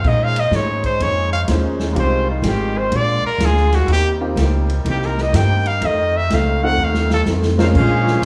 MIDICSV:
0, 0, Header, 1, 10, 480
1, 0, Start_track
1, 0, Key_signature, -5, "minor"
1, 0, Tempo, 481928
1, 36, Time_signature, 4, 2, 24, 8
1, 8217, End_track
2, 0, Start_track
2, 0, Title_t, "Trumpet"
2, 0, Program_c, 0, 56
2, 79, Note_on_c, 0, 75, 84
2, 235, Note_on_c, 0, 77, 96
2, 250, Note_off_c, 0, 75, 0
2, 393, Note_on_c, 0, 75, 85
2, 408, Note_off_c, 0, 77, 0
2, 554, Note_on_c, 0, 73, 89
2, 569, Note_off_c, 0, 75, 0
2, 847, Note_off_c, 0, 73, 0
2, 853, Note_on_c, 0, 72, 83
2, 1020, Note_on_c, 0, 73, 93
2, 1035, Note_off_c, 0, 72, 0
2, 1315, Note_off_c, 0, 73, 0
2, 1321, Note_on_c, 0, 77, 91
2, 1416, Note_off_c, 0, 77, 0
2, 1981, Note_on_c, 0, 72, 84
2, 2263, Note_off_c, 0, 72, 0
2, 2296, Note_on_c, 0, 63, 50
2, 2455, Note_off_c, 0, 63, 0
2, 2472, Note_on_c, 0, 67, 86
2, 2769, Note_on_c, 0, 72, 90
2, 2784, Note_off_c, 0, 67, 0
2, 2946, Note_on_c, 0, 74, 109
2, 2961, Note_off_c, 0, 72, 0
2, 3240, Note_off_c, 0, 74, 0
2, 3246, Note_on_c, 0, 70, 99
2, 3437, Note_on_c, 0, 68, 90
2, 3452, Note_off_c, 0, 70, 0
2, 3731, Note_on_c, 0, 66, 90
2, 3746, Note_off_c, 0, 68, 0
2, 3883, Note_off_c, 0, 66, 0
2, 3907, Note_on_c, 0, 67, 93
2, 4087, Note_off_c, 0, 67, 0
2, 4883, Note_on_c, 0, 67, 76
2, 5036, Note_on_c, 0, 70, 73
2, 5051, Note_off_c, 0, 67, 0
2, 5200, Note_on_c, 0, 75, 86
2, 5215, Note_off_c, 0, 70, 0
2, 5336, Note_on_c, 0, 79, 110
2, 5351, Note_off_c, 0, 75, 0
2, 5649, Note_on_c, 0, 77, 96
2, 5664, Note_off_c, 0, 79, 0
2, 5832, Note_on_c, 0, 75, 90
2, 5847, Note_off_c, 0, 77, 0
2, 6141, Note_on_c, 0, 76, 98
2, 6156, Note_off_c, 0, 75, 0
2, 6321, Note_on_c, 0, 77, 90
2, 6336, Note_off_c, 0, 76, 0
2, 6613, Note_on_c, 0, 78, 107
2, 6628, Note_off_c, 0, 77, 0
2, 6811, Note_on_c, 0, 77, 93
2, 6826, Note_off_c, 0, 78, 0
2, 7100, Note_off_c, 0, 77, 0
2, 7110, Note_on_c, 0, 69, 91
2, 7196, Note_off_c, 0, 69, 0
2, 8217, End_track
3, 0, Start_track
3, 0, Title_t, "Trumpet section"
3, 0, Program_c, 1, 61
3, 7560, Note_on_c, 1, 72, 76
3, 7564, Note_on_c, 1, 63, 68
3, 7566, Note_on_c, 1, 69, 73
3, 7568, Note_on_c, 1, 77, 87
3, 7631, Note_off_c, 1, 72, 0
3, 7635, Note_off_c, 1, 63, 0
3, 7636, Note_off_c, 1, 69, 0
3, 7637, Note_off_c, 1, 77, 0
3, 7723, Note_on_c, 1, 68, 79
3, 7731, Note_on_c, 1, 72, 82
3, 7733, Note_on_c, 1, 61, 78
3, 7739, Note_on_c, 1, 77, 94
3, 8166, Note_off_c, 1, 68, 0
3, 8170, Note_off_c, 1, 72, 0
3, 8171, Note_off_c, 1, 61, 0
3, 8174, Note_off_c, 1, 77, 0
3, 8217, End_track
4, 0, Start_track
4, 0, Title_t, "Grand piano"
4, 0, Program_c, 2, 0
4, 1477, Note_on_c, 2, 61, 48
4, 1479, Note_on_c, 2, 56, 57
4, 1479, Note_on_c, 2, 63, 48
4, 1479, Note_on_c, 2, 72, 57
4, 1483, Note_on_c, 2, 65, 48
4, 1924, Note_off_c, 2, 56, 0
4, 1929, Note_off_c, 2, 65, 0
4, 1936, Note_off_c, 2, 63, 0
4, 1939, Note_on_c, 2, 56, 65
4, 1944, Note_on_c, 2, 65, 59
4, 1946, Note_on_c, 2, 60, 64
4, 1949, Note_on_c, 2, 67, 73
4, 1950, Note_on_c, 2, 63, 60
4, 1955, Note_off_c, 2, 61, 0
4, 1956, Note_off_c, 2, 72, 0
4, 2232, Note_off_c, 2, 56, 0
4, 2234, Note_off_c, 2, 65, 0
4, 2235, Note_off_c, 2, 60, 0
4, 2237, Note_off_c, 2, 67, 0
4, 2238, Note_off_c, 2, 63, 0
4, 4190, Note_on_c, 2, 58, 64
4, 4190, Note_on_c, 2, 63, 61
4, 4192, Note_on_c, 2, 60, 58
4, 4193, Note_on_c, 2, 65, 59
4, 4198, Note_on_c, 2, 67, 66
4, 4336, Note_off_c, 2, 58, 0
4, 4336, Note_off_c, 2, 63, 0
4, 4337, Note_off_c, 2, 60, 0
4, 4338, Note_off_c, 2, 65, 0
4, 4340, Note_off_c, 2, 67, 0
4, 6602, Note_on_c, 2, 57, 69
4, 6602, Note_on_c, 2, 63, 68
4, 6607, Note_on_c, 2, 60, 62
4, 6607, Note_on_c, 2, 65, 67
4, 6617, Note_on_c, 2, 69, 80
4, 6743, Note_off_c, 2, 57, 0
4, 6743, Note_off_c, 2, 63, 0
4, 6746, Note_off_c, 2, 60, 0
4, 6746, Note_off_c, 2, 65, 0
4, 6750, Note_off_c, 2, 69, 0
4, 7547, Note_on_c, 2, 56, 70
4, 7554, Note_on_c, 2, 60, 65
4, 7554, Note_on_c, 2, 70, 75
4, 7558, Note_on_c, 2, 61, 63
4, 7561, Note_on_c, 2, 65, 65
4, 7696, Note_off_c, 2, 56, 0
4, 7699, Note_off_c, 2, 70, 0
4, 7700, Note_off_c, 2, 60, 0
4, 7702, Note_off_c, 2, 61, 0
4, 7703, Note_off_c, 2, 65, 0
4, 8217, End_track
5, 0, Start_track
5, 0, Title_t, "Trombone section"
5, 0, Program_c, 3, 61
5, 7528, Note_on_c, 3, 60, 71
5, 7532, Note_on_c, 3, 57, 70
5, 7535, Note_on_c, 3, 65, 67
5, 7607, Note_off_c, 3, 60, 0
5, 7610, Note_off_c, 3, 57, 0
5, 7612, Note_off_c, 3, 65, 0
5, 7706, Note_on_c, 3, 56, 86
5, 7708, Note_on_c, 3, 65, 83
5, 7709, Note_on_c, 3, 61, 84
5, 8157, Note_off_c, 3, 56, 0
5, 8158, Note_off_c, 3, 61, 0
5, 8158, Note_off_c, 3, 65, 0
5, 8217, End_track
6, 0, Start_track
6, 0, Title_t, "Hollow-body jazz guitar"
6, 0, Program_c, 4, 26
6, 46, Note_on_c, 4, 46, 43
6, 57, Note_on_c, 4, 51, 48
6, 63, Note_on_c, 4, 56, 51
6, 77, Note_on_c, 4, 61, 52
6, 374, Note_off_c, 4, 46, 0
6, 379, Note_off_c, 4, 51, 0
6, 382, Note_off_c, 4, 56, 0
6, 390, Note_off_c, 4, 61, 0
6, 514, Note_on_c, 4, 46, 58
6, 521, Note_on_c, 4, 51, 57
6, 530, Note_on_c, 4, 56, 58
6, 538, Note_on_c, 4, 61, 65
6, 848, Note_off_c, 4, 46, 0
6, 852, Note_off_c, 4, 51, 0
6, 856, Note_off_c, 4, 56, 0
6, 860, Note_off_c, 4, 61, 0
6, 997, Note_on_c, 4, 46, 45
6, 1009, Note_on_c, 4, 51, 55
6, 1017, Note_on_c, 4, 56, 47
6, 1030, Note_on_c, 4, 61, 54
6, 1329, Note_off_c, 4, 46, 0
6, 1335, Note_off_c, 4, 51, 0
6, 1339, Note_off_c, 4, 56, 0
6, 1346, Note_off_c, 4, 61, 0
6, 1479, Note_on_c, 4, 46, 64
6, 1489, Note_on_c, 4, 51, 70
6, 1492, Note_on_c, 4, 56, 66
6, 1497, Note_on_c, 4, 61, 73
6, 1810, Note_off_c, 4, 46, 0
6, 1815, Note_off_c, 4, 51, 0
6, 1817, Note_off_c, 4, 56, 0
6, 1819, Note_off_c, 4, 61, 0
6, 1947, Note_on_c, 4, 53, 51
6, 1957, Note_on_c, 4, 56, 52
6, 1967, Note_on_c, 4, 63, 50
6, 1977, Note_on_c, 4, 67, 50
6, 2284, Note_off_c, 4, 53, 0
6, 2289, Note_off_c, 4, 56, 0
6, 2294, Note_off_c, 4, 63, 0
6, 2299, Note_off_c, 4, 67, 0
6, 2417, Note_on_c, 4, 53, 58
6, 2425, Note_on_c, 4, 56, 69
6, 2431, Note_on_c, 4, 63, 58
6, 2436, Note_on_c, 4, 67, 72
6, 2759, Note_off_c, 4, 53, 0
6, 2763, Note_off_c, 4, 56, 0
6, 2766, Note_off_c, 4, 63, 0
6, 2768, Note_off_c, 4, 67, 0
6, 2895, Note_on_c, 4, 46, 49
6, 2907, Note_on_c, 4, 56, 53
6, 2921, Note_on_c, 4, 62, 51
6, 2927, Note_on_c, 4, 65, 49
6, 3238, Note_off_c, 4, 46, 0
6, 3243, Note_off_c, 4, 56, 0
6, 3251, Note_off_c, 4, 62, 0
6, 3254, Note_off_c, 4, 65, 0
6, 3391, Note_on_c, 4, 46, 67
6, 3397, Note_on_c, 4, 56, 66
6, 3402, Note_on_c, 4, 62, 76
6, 3412, Note_on_c, 4, 65, 72
6, 3725, Note_off_c, 4, 46, 0
6, 3729, Note_off_c, 4, 56, 0
6, 3731, Note_off_c, 4, 62, 0
6, 3736, Note_off_c, 4, 65, 0
6, 3870, Note_on_c, 4, 51, 47
6, 3883, Note_on_c, 4, 58, 48
6, 3895, Note_on_c, 4, 60, 49
6, 3902, Note_on_c, 4, 67, 52
6, 4205, Note_off_c, 4, 51, 0
6, 4211, Note_off_c, 4, 58, 0
6, 4218, Note_off_c, 4, 60, 0
6, 4221, Note_off_c, 4, 67, 0
6, 4350, Note_on_c, 4, 51, 74
6, 4362, Note_on_c, 4, 58, 69
6, 4369, Note_on_c, 4, 60, 75
6, 4369, Note_on_c, 4, 67, 77
6, 4685, Note_off_c, 4, 51, 0
6, 4691, Note_off_c, 4, 58, 0
6, 4695, Note_off_c, 4, 60, 0
6, 4695, Note_off_c, 4, 67, 0
6, 4837, Note_on_c, 4, 51, 53
6, 4850, Note_on_c, 4, 58, 54
6, 4857, Note_on_c, 4, 60, 50
6, 4869, Note_on_c, 4, 67, 52
6, 5169, Note_off_c, 4, 51, 0
6, 5175, Note_off_c, 4, 58, 0
6, 5179, Note_off_c, 4, 60, 0
6, 5185, Note_off_c, 4, 67, 0
6, 5305, Note_on_c, 4, 51, 65
6, 5318, Note_on_c, 4, 58, 67
6, 5327, Note_on_c, 4, 60, 69
6, 5331, Note_on_c, 4, 67, 73
6, 5643, Note_off_c, 4, 51, 0
6, 5650, Note_off_c, 4, 58, 0
6, 5654, Note_off_c, 4, 60, 0
6, 5656, Note_off_c, 4, 67, 0
6, 5796, Note_on_c, 4, 41, 45
6, 5806, Note_on_c, 4, 51, 50
6, 5813, Note_on_c, 4, 57, 48
6, 5824, Note_on_c, 4, 60, 50
6, 6128, Note_off_c, 4, 41, 0
6, 6134, Note_off_c, 4, 51, 0
6, 6137, Note_off_c, 4, 57, 0
6, 6143, Note_off_c, 4, 60, 0
6, 6297, Note_on_c, 4, 41, 59
6, 6302, Note_on_c, 4, 51, 58
6, 6308, Note_on_c, 4, 57, 66
6, 6313, Note_on_c, 4, 60, 69
6, 6619, Note_off_c, 4, 41, 0
6, 6622, Note_off_c, 4, 51, 0
6, 6625, Note_off_c, 4, 57, 0
6, 6627, Note_off_c, 4, 60, 0
6, 6755, Note_on_c, 4, 41, 48
6, 6769, Note_on_c, 4, 51, 48
6, 6777, Note_on_c, 4, 57, 51
6, 6788, Note_on_c, 4, 60, 55
6, 7089, Note_off_c, 4, 41, 0
6, 7095, Note_off_c, 4, 51, 0
6, 7099, Note_off_c, 4, 57, 0
6, 7105, Note_off_c, 4, 60, 0
6, 7252, Note_on_c, 4, 41, 64
6, 7257, Note_on_c, 4, 51, 66
6, 7268, Note_on_c, 4, 57, 69
6, 7271, Note_on_c, 4, 60, 74
6, 7577, Note_off_c, 4, 41, 0
6, 7580, Note_off_c, 4, 51, 0
6, 7585, Note_off_c, 4, 57, 0
6, 7587, Note_off_c, 4, 60, 0
6, 7725, Note_on_c, 4, 58, 46
6, 7736, Note_on_c, 4, 61, 54
6, 7744, Note_on_c, 4, 68, 47
6, 7755, Note_on_c, 4, 72, 51
6, 8054, Note_off_c, 4, 58, 0
6, 8060, Note_off_c, 4, 61, 0
6, 8064, Note_off_c, 4, 68, 0
6, 8069, Note_off_c, 4, 72, 0
6, 8217, End_track
7, 0, Start_track
7, 0, Title_t, "Trombone section"
7, 0, Program_c, 5, 61
7, 0, Note_on_c, 5, 72, 69
7, 44, Note_on_c, 5, 63, 85
7, 52, Note_on_c, 5, 49, 74
7, 55, Note_on_c, 5, 56, 66
7, 1913, Note_off_c, 5, 72, 0
7, 1939, Note_off_c, 5, 63, 0
7, 1939, Note_on_c, 5, 65, 81
7, 1943, Note_off_c, 5, 49, 0
7, 1946, Note_on_c, 5, 55, 67
7, 1951, Note_on_c, 5, 51, 73
7, 2894, Note_off_c, 5, 56, 0
7, 2896, Note_off_c, 5, 65, 0
7, 2900, Note_off_c, 5, 55, 0
7, 2902, Note_off_c, 5, 51, 0
7, 2915, Note_on_c, 5, 65, 81
7, 2918, Note_on_c, 5, 50, 71
7, 2918, Note_on_c, 5, 58, 65
7, 2927, Note_on_c, 5, 56, 64
7, 3864, Note_off_c, 5, 65, 0
7, 3866, Note_off_c, 5, 50, 0
7, 3870, Note_off_c, 5, 56, 0
7, 3875, Note_on_c, 5, 55, 72
7, 3878, Note_on_c, 5, 63, 82
7, 3885, Note_on_c, 5, 48, 72
7, 5767, Note_off_c, 5, 58, 0
7, 5775, Note_off_c, 5, 55, 0
7, 5813, Note_on_c, 5, 57, 67
7, 5817, Note_on_c, 5, 53, 64
7, 7550, Note_off_c, 5, 48, 0
7, 7550, Note_off_c, 5, 53, 0
7, 7550, Note_off_c, 5, 57, 0
7, 7550, Note_off_c, 5, 63, 0
7, 7719, Note_on_c, 5, 46, 75
7, 7723, Note_on_c, 5, 56, 73
7, 7724, Note_on_c, 5, 58, 77
7, 7729, Note_on_c, 5, 61, 87
7, 8217, Note_off_c, 5, 46, 0
7, 8217, Note_off_c, 5, 56, 0
7, 8217, Note_off_c, 5, 58, 0
7, 8217, Note_off_c, 5, 61, 0
7, 8217, End_track
8, 0, Start_track
8, 0, Title_t, "Upright bass"
8, 0, Program_c, 6, 32
8, 39, Note_on_c, 6, 46, 83
8, 500, Note_off_c, 6, 46, 0
8, 506, Note_on_c, 6, 44, 90
8, 975, Note_off_c, 6, 44, 0
8, 993, Note_on_c, 6, 41, 83
8, 1459, Note_off_c, 6, 41, 0
8, 1477, Note_on_c, 6, 39, 94
8, 1935, Note_off_c, 6, 39, 0
8, 1941, Note_on_c, 6, 36, 81
8, 2406, Note_off_c, 6, 36, 0
8, 2412, Note_on_c, 6, 32, 93
8, 2888, Note_off_c, 6, 32, 0
8, 2903, Note_on_c, 6, 34, 84
8, 3203, Note_off_c, 6, 34, 0
8, 3368, Note_on_c, 6, 38, 98
8, 3846, Note_off_c, 6, 38, 0
8, 3852, Note_on_c, 6, 39, 84
8, 4328, Note_off_c, 6, 39, 0
8, 4340, Note_on_c, 6, 37, 88
8, 4812, Note_off_c, 6, 37, 0
8, 4827, Note_on_c, 6, 36, 83
8, 5296, Note_off_c, 6, 36, 0
8, 5308, Note_on_c, 6, 43, 90
8, 5776, Note_off_c, 6, 43, 0
8, 5790, Note_on_c, 6, 41, 82
8, 6257, Note_off_c, 6, 41, 0
8, 6277, Note_on_c, 6, 37, 87
8, 6741, Note_off_c, 6, 37, 0
8, 6748, Note_on_c, 6, 39, 86
8, 7217, Note_off_c, 6, 39, 0
8, 7239, Note_on_c, 6, 41, 94
8, 7703, Note_off_c, 6, 41, 0
8, 7717, Note_on_c, 6, 34, 90
8, 8178, Note_off_c, 6, 34, 0
8, 8184, Note_on_c, 6, 36, 95
8, 8217, Note_off_c, 6, 36, 0
8, 8217, End_track
9, 0, Start_track
9, 0, Title_t, "Muted upright bass strokes"
9, 3225, Note_on_c, 9, 29, 41
9, 3325, Note_off_c, 9, 29, 0
9, 8217, End_track
10, 0, Start_track
10, 0, Title_t, "Drums"
10, 41, Note_on_c, 9, 36, 69
10, 43, Note_on_c, 9, 49, 67
10, 140, Note_off_c, 9, 36, 0
10, 142, Note_off_c, 9, 49, 0
10, 359, Note_on_c, 9, 51, 75
10, 458, Note_off_c, 9, 51, 0
10, 516, Note_on_c, 9, 38, 71
10, 516, Note_on_c, 9, 44, 55
10, 616, Note_off_c, 9, 38, 0
10, 616, Note_off_c, 9, 44, 0
10, 833, Note_on_c, 9, 51, 50
10, 834, Note_on_c, 9, 36, 47
10, 932, Note_off_c, 9, 51, 0
10, 934, Note_off_c, 9, 36, 0
10, 999, Note_on_c, 9, 51, 65
10, 1098, Note_off_c, 9, 51, 0
10, 1471, Note_on_c, 9, 38, 73
10, 1471, Note_on_c, 9, 44, 62
10, 1471, Note_on_c, 9, 51, 72
10, 1570, Note_off_c, 9, 38, 0
10, 1570, Note_off_c, 9, 44, 0
10, 1570, Note_off_c, 9, 51, 0
10, 1786, Note_on_c, 9, 38, 58
10, 1886, Note_off_c, 9, 38, 0
10, 1953, Note_on_c, 9, 51, 59
10, 2052, Note_off_c, 9, 51, 0
10, 2424, Note_on_c, 9, 38, 68
10, 2424, Note_on_c, 9, 44, 52
10, 2424, Note_on_c, 9, 51, 72
10, 2524, Note_off_c, 9, 38, 0
10, 2524, Note_off_c, 9, 44, 0
10, 2524, Note_off_c, 9, 51, 0
10, 2905, Note_on_c, 9, 51, 66
10, 3004, Note_off_c, 9, 51, 0
10, 3389, Note_on_c, 9, 38, 81
10, 3389, Note_on_c, 9, 44, 66
10, 3389, Note_on_c, 9, 51, 75
10, 3489, Note_off_c, 9, 38, 0
10, 3489, Note_off_c, 9, 44, 0
10, 3489, Note_off_c, 9, 51, 0
10, 3550, Note_on_c, 9, 38, 30
10, 3650, Note_off_c, 9, 38, 0
10, 3707, Note_on_c, 9, 38, 48
10, 3709, Note_on_c, 9, 51, 47
10, 3807, Note_off_c, 9, 38, 0
10, 3808, Note_off_c, 9, 51, 0
10, 3864, Note_on_c, 9, 51, 60
10, 3964, Note_off_c, 9, 51, 0
10, 4353, Note_on_c, 9, 38, 73
10, 4353, Note_on_c, 9, 44, 60
10, 4353, Note_on_c, 9, 51, 67
10, 4452, Note_off_c, 9, 38, 0
10, 4452, Note_off_c, 9, 44, 0
10, 4452, Note_off_c, 9, 51, 0
10, 4676, Note_on_c, 9, 51, 51
10, 4776, Note_off_c, 9, 51, 0
10, 4836, Note_on_c, 9, 51, 65
10, 4936, Note_off_c, 9, 51, 0
10, 4998, Note_on_c, 9, 38, 29
10, 5098, Note_off_c, 9, 38, 0
10, 5156, Note_on_c, 9, 38, 48
10, 5256, Note_off_c, 9, 38, 0
10, 5317, Note_on_c, 9, 38, 77
10, 5317, Note_on_c, 9, 44, 62
10, 5317, Note_on_c, 9, 51, 75
10, 5416, Note_off_c, 9, 38, 0
10, 5416, Note_off_c, 9, 44, 0
10, 5416, Note_off_c, 9, 51, 0
10, 5633, Note_on_c, 9, 51, 49
10, 5732, Note_off_c, 9, 51, 0
10, 5792, Note_on_c, 9, 51, 66
10, 5892, Note_off_c, 9, 51, 0
10, 6278, Note_on_c, 9, 38, 69
10, 6278, Note_on_c, 9, 44, 59
10, 6278, Note_on_c, 9, 51, 66
10, 6378, Note_off_c, 9, 38, 0
10, 6378, Note_off_c, 9, 44, 0
10, 6378, Note_off_c, 9, 51, 0
10, 6914, Note_on_c, 9, 38, 54
10, 7014, Note_off_c, 9, 38, 0
10, 7072, Note_on_c, 9, 38, 75
10, 7171, Note_off_c, 9, 38, 0
10, 7227, Note_on_c, 9, 38, 72
10, 7227, Note_on_c, 9, 44, 60
10, 7327, Note_off_c, 9, 38, 0
10, 7327, Note_off_c, 9, 44, 0
10, 7393, Note_on_c, 9, 38, 73
10, 7492, Note_off_c, 9, 38, 0
10, 7556, Note_on_c, 9, 38, 95
10, 7656, Note_off_c, 9, 38, 0
10, 7717, Note_on_c, 9, 36, 77
10, 7718, Note_on_c, 9, 49, 84
10, 7816, Note_off_c, 9, 36, 0
10, 7817, Note_off_c, 9, 49, 0
10, 8040, Note_on_c, 9, 38, 50
10, 8140, Note_off_c, 9, 38, 0
10, 8217, End_track
0, 0, End_of_file